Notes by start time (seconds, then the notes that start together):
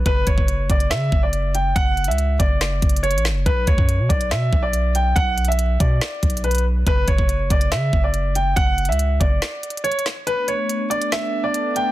0.06 F#1 B4, kick, closed hi-hat
0.27 F#1 C#5, kick, closed hi-hat
0.38 F#1, kick
0.48 closed hi-hat
0.70 F#1 D5, kick, closed hi-hat
0.80 closed hi-hat
0.90 C#3 E5, snare, clap, closed hi-hat
1.12 F#1, kick
1.23 D5
1.33 closed hi-hat
1.55 G5, closed hi-hat
1.76 F#1 F#5, kick, closed hi-hat
1.97 closed hi-hat
2.04 C#2 E5, closed hi-hat
2.11 closed hi-hat
2.18 closed hi-hat
2.39 F#1 D5, kick, closed hi-hat
2.61 snare, clap, closed hi-hat
2.82 F#1, kick, closed hi-hat
2.89 closed hi-hat
2.97 closed hi-hat
3.03 C#5, closed hi-hat
3.11 A1, closed hi-hat
3.18 closed hi-hat
3.25 snare, clap
3.30 F#1
3.46 B1 B4, kick, closed hi-hat
3.67 D2 C#5, kick, closed hi-hat
3.78 F#2, kick
3.89 closed hi-hat
3.99 B2
4.09 B1 D5, kick, closed hi-hat
4.21 closed hi-hat
4.31 B2 E5, snare, clap, closed hi-hat
4.53 B1, kick
4.63 D5
4.73 closed hi-hat
4.95 G5, closed hi-hat
5.16 B1 F#5, kick, closed hi-hat
5.38 closed hi-hat
5.45 E5, closed hi-hat
5.52 closed hi-hat
5.59 closed hi-hat
5.80 B2 D5, kick, closed hi-hat
6.01 snare, clap, closed hi-hat
6.23 B1, kick, closed hi-hat
6.30 closed hi-hat
6.37 closed hi-hat
6.44 B4, closed hi-hat
6.51 closed hi-hat
6.55 closed hi-hat
6.58 closed hi-hat
6.87 F#1 B4, kick, closed hi-hat
7.08 F#1 C#5, kick, closed hi-hat
7.18 F#1, kick
7.29 closed hi-hat
7.50 F#1 D5, kick, closed hi-hat
7.61 closed hi-hat
7.72 C#3 E5, snare, clap, closed hi-hat
7.93 F#1, kick
8.04 D5
8.14 closed hi-hat
8.35 G5, closed hi-hat
8.56 F#1 F#5, kick, closed hi-hat
8.78 closed hi-hat
8.85 C#2 E5, closed hi-hat
8.92 closed hi-hat
8.99 closed hi-hat
9.20 F#1 D5, kick, closed hi-hat
9.42 snare, clap, closed hi-hat
9.63 closed hi-hat
9.70 closed hi-hat
9.77 closed hi-hat
9.84 C#5, closed hi-hat
9.92 closed hi-hat
9.99 closed hi-hat
10.06 snare, clap
10.27 A3 B3 D4 B4, closed hi-hat
10.48 C#5, closed hi-hat
10.70 closed hi-hat
10.90 D5, closed hi-hat
11.02 closed hi-hat
11.12 E5, snare, clap, closed hi-hat
11.44 D5
11.54 closed hi-hat
11.76 G5, closed hi-hat